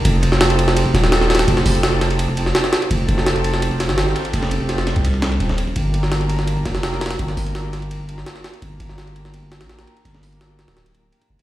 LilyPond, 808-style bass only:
\new Staff \with { instrumentName = "808-style bass" } { \clef bass \time 4/4 \key g \minor \tempo 4 = 168 f,,2~ f,,8 ees,,4. | f,,8 f,,2~ f,,8 r4 | f,,8 f,,2~ f,,16 g,,8. r8 | f,,4.~ f,,16 c,4~ c,16 ees,,4 |
g,,2~ g,,8 f,,4. | g,,8 g,,2~ g,,8 r4 | g,,8 g,,2~ g,,16 a,,8. r8 | g,,4.~ g,,16 d,,4~ d,,16 r8 f,,16 r16 | }